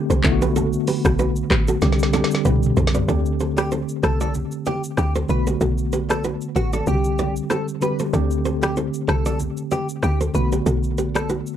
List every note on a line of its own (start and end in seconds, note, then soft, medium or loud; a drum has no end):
0.00 0.23 D3 medium
0.00 0.24 A3 medium
0.00 0.26 C4 medium
0.00 0.26 G4 loud
0.10 0.22 C2 medium
0.10 0.19 A4 medium
0.10 0.18 C5 medium
0.10 shaker medium
0.23 0.78 B1 loud
0.23 1.25 D3 loud
0.23 1.26 A3 loud
0.23 1.26 B3 medium
0.23 0.32 E4 medium
0.23 kick medium
0.23 clap loud
0.23 shaker medium
0.32 1.30 F#4 loud
0.42 0.50 G4 medium
0.42 0.50 B4 medium
0.42 low bongo medium
0.42 shaker medium
0.56 0.67 F#4 medium
0.56 0.66 A4 medium
0.56 low conga medium
0.56 shaker medium
0.73 shaker soft
0.87 0.98 G4 medium
0.87 0.98 B4 medium
0.87 open hi-hat medium
0.87 shaker medium
1.05 1.44 B1 medium
1.05 1.14 F#4 medium
1.05 1.13 A4 medium
1.05 kick medium
1.05 cross-stick loud
1.05 shaker medium
1.19 1.30 F#4 medium
1.19 1.29 B4 medium
1.19 high bongo medium
1.19 shaker medium
1.36 shaker medium
1.50 1.77 A1 medium
1.50 1.61 G4 medium
1.50 1.61 B4 medium
1.50 kick loud
1.50 cross-stick loud
1.50 clap loud
1.50 shaker medium
1.68 1.77 F#4 medium
1.68 1.76 A4 medium
1.68 shaker medium
1.81 2.24 C2 loud
1.81 2.07 D3 medium
1.81 2.08 G3 medium
1.81 2.08 C4 medium
1.81 2.09 G4 loud
1.81 snare medium
1.81 low bongo medium
1.81 low conga medium
1.81 shaker medium
1.92 snare medium
1.99 snare medium
1.99 shaker medium
2.13 2.73 D3 loud
2.13 2.74 G3 medium
2.13 2.74 C4 medium
2.13 2.24 F#4 medium
2.13 2.75 G4 loud
2.13 2.24 A4 medium
2.13 snare medium
2.13 high bongo medium
2.13 low bongo medium
2.13 low conga medium
2.13 shaker medium
2.24 snare medium
2.31 snare medium
2.31 shaker medium
2.45 2.72 C2 medium
2.45 2.56 G4 medium
2.45 2.55 B4 medium
2.45 mid tom medium
2.45 high bongo medium
2.45 low bongo medium
2.45 shaker medium
2.56 mid tom medium
2.63 mid tom medium
2.63 shaker medium
2.77 3.04 B1 medium
2.77 2.88 A4 medium
2.77 2.87 C5 medium
2.77 floor tom medium
2.77 shaker medium
2.87 snare loud
2.94 3.03 B4 medium
2.94 3.03 D5 medium
2.94 floor tom loud
2.94 low bongo medium
2.94 shaker medium
3.07 3.85 D2 loud
3.07 3.89 D3 medium
3.07 3.89 A3 medium
3.07 3.90 C4 medium
3.07 3.19 D4 medium
3.07 3.90 G4 medium
3.07 3.19 A4 medium
3.07 low conga medium
3.07 shaker medium
3.26 shaker soft
3.40 3.51 A4 medium
3.40 3.50 C5 medium
3.40 shaker medium
3.58 3.70 G4 medium
3.58 3.66 B4 medium
3.58 3.66 D5 medium
3.58 cross-stick loud
3.58 shaker medium
3.72 3.82 A4 medium
3.72 3.82 C5 medium
3.72 high bongo medium
3.72 shaker medium
3.89 shaker medium
4.03 4.45 C2 loud
4.03 4.18 A4 medium
4.03 4.14 A4 medium
4.03 4.13 C5 medium
4.03 cross-stick loud
4.03 shaker medium
4.20 4.33 A4 medium
4.20 4.29 B4 medium
4.20 4.29 D5 medium
4.20 high bongo medium
4.20 shaker medium
4.34 low bongo soft
4.34 low conga medium
4.34 shaker medium
4.52 shaker medium
4.66 4.81 G4 medium
4.66 4.77 B4 medium
4.66 4.76 D5 medium
4.66 high bongo soft
4.66 low bongo medium
4.66 low conga medium
4.66 shaker medium
4.84 shaker medium
4.97 5.25 D2 medium
4.97 5.13 G4 medium
4.97 cross-stick medium
4.97 high bongo medium
4.97 low bongo medium
4.97 shaker medium
5.15 5.24 A4 medium
5.15 5.24 C5 medium
5.15 shaker medium
5.28 5.56 B1 loud
5.28 6.30 D3 medium
5.28 6.31 A3 medium
5.28 6.31 B3 medium
5.28 6.32 F#4 medium
5.28 5.45 B4 medium
5.28 shaker medium
5.47 5.56 G4 medium
5.47 5.55 B4 medium
5.47 low bongo medium
5.47 shaker medium
5.61 6.37 B1 loud
5.61 5.72 F#4 medium
5.61 5.71 A4 medium
5.61 low conga medium
5.61 shaker medium
5.78 shaker soft
5.92 6.03 G4 medium
5.92 6.03 B4 medium
5.92 shaker medium
6.10 6.22 A4 medium
6.10 6.19 B4 medium
6.10 6.18 D5 medium
6.10 cross-stick loud
6.10 shaker medium
6.24 6.35 F#4 medium
6.24 6.34 B4 medium
6.24 high bongo medium
6.24 shaker medium
6.41 shaker medium
6.56 6.82 A1 medium
6.56 6.71 F#4 medium
6.56 6.67 G4 medium
6.56 6.66 B4 medium
6.56 shaker medium
6.73 6.86 A4 medium
6.73 6.82 B4 medium
6.73 6.81 D5 medium
6.73 high bongo medium
6.73 shaker medium
6.86 7.41 C2 loud
6.86 7.64 D3 medium
6.86 7.64 G3 medium
6.86 7.65 C4 medium
6.86 6.95 F#4 medium
6.86 7.34 G4 medium
6.86 low bongo medium
6.86 low conga medium
6.86 shaker medium
6.95 7.68 G4 medium
7.04 shaker medium
7.18 7.29 B4 medium
7.18 7.29 D5 medium
7.18 high bongo soft
7.18 low bongo medium
7.18 low conga medium
7.18 shaker medium
7.36 shaker medium
7.50 7.61 G4 medium
7.50 7.66 A4 medium
7.50 7.60 C5 medium
7.50 cross-stick medium
7.50 high bongo medium
7.50 low bongo medium
7.50 shaker medium
7.68 shaker medium
7.81 8.03 D3 medium
7.81 8.03 G3 medium
7.81 8.03 C4 medium
7.81 7.93 G4 medium
7.81 8.04 G4 medium
7.81 7.92 B4 medium
7.81 7.97 B4 medium
7.81 shaker medium
7.99 8.08 A4 medium
7.99 8.08 C5 medium
7.99 low bongo medium
7.99 shaker medium
8.12 8.90 D2 loud
8.12 8.94 D3 medium
8.12 8.95 A3 medium
8.12 8.95 C4 medium
8.12 8.24 D4 medium
8.12 8.96 G4 loud
8.12 8.24 A4 medium
8.12 low conga medium
8.12 shaker medium
8.31 shaker soft
8.45 8.56 A4 medium
8.45 8.55 C5 medium
8.45 shaker medium
8.63 8.75 G4 medium
8.63 8.71 B4 medium
8.63 8.71 D5 medium
8.63 cross-stick loud
8.63 shaker medium
8.77 8.87 A4 medium
8.77 8.87 C5 medium
8.77 high bongo medium
8.77 shaker medium
8.94 shaker medium
9.08 9.50 C2 loud
9.08 9.23 A4 medium
9.08 9.19 A4 medium
9.08 9.18 C5 medium
9.08 cross-stick loud
9.08 shaker medium
9.26 9.38 A4 medium
9.26 9.35 B4 medium
9.26 9.34 D5 medium
9.26 high bongo medium
9.26 shaker medium
9.40 low bongo soft
9.40 low conga medium
9.40 shaker medium
9.57 shaker medium
9.71 9.87 G4 medium
9.71 9.82 B4 medium
9.71 9.81 D5 medium
9.71 high bongo soft
9.71 low bongo medium
9.71 low conga medium
9.71 shaker medium
9.89 shaker medium
10.03 10.30 D2 loud
10.03 10.18 G4 medium
10.03 cross-stick medium
10.03 high bongo medium
10.03 low bongo medium
10.03 shaker medium
10.21 10.29 A4 medium
10.21 10.29 C5 medium
10.21 shaker medium
10.34 10.61 B1 loud
10.34 11.36 D3 medium
10.34 11.36 A3 medium
10.34 11.37 B3 medium
10.34 11.37 F#4 medium
10.34 10.50 B4 medium
10.34 shaker medium
10.52 10.61 G4 medium
10.52 10.60 B4 medium
10.52 low bongo medium
10.52 shaker medium
10.66 11.43 B1 loud
10.66 10.77 F#4 medium
10.66 10.76 A4 medium
10.66 low conga medium
10.66 shaker medium
10.83 shaker soft
10.98 11.09 G4 medium
10.98 11.08 B4 medium
10.98 shaker medium
11.15 11.28 A4 medium
11.15 11.24 B4 medium
11.15 11.23 D5 medium
11.15 cross-stick loud
11.15 shaker medium
11.29 11.40 F#4 medium
11.29 11.39 B4 medium
11.29 high bongo medium
11.29 shaker medium
11.47 shaker medium